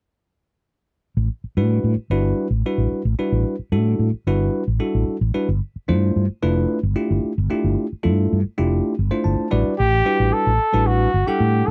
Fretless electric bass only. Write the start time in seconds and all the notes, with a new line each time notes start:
1.17 A1
1.44 muted fretless electric bass stroke
1.57 A2
1.84 A2
1.97 muted fretless electric bass stroke
2.10 G1
2.50 A1
2.78 A1
2.92 muted fretless electric bass stroke
3.05 A1
3.32 A1
3.59 muted fretless electric bass stroke
3.72 A2
3.99 A2
4.14 muted fretless electric bass stroke
4.27 G1
4.68 A1
4.95 A1
5.08 muted fretless electric bass stroke
5.21 A1
5.36 muted fretless electric bass stroke
5.49 G1
5.76 muted fretless electric bass stroke
5.89 G2
6.16 G2
6.30 muted fretless electric bass stroke
6.43 F1
6.83 G1
7.11 G1
7.24 muted fretless electric bass stroke
7.38 G1
7.64 G1
7.93 muted fretless electric bass stroke
8.05 G2
8.33 G2
8.46 muted fretless electric bass stroke
8.59 F1
8.99 G1
9.25 G1
9.40 muted fretless electric bass stroke
9.53 A1
9.68 muted fretless electric bass stroke
9.80 A1
10.20 A1
10.47 A1
10.74 A1
11.14 G1
11.28 muted fretless electric bass stroke
11.40 A2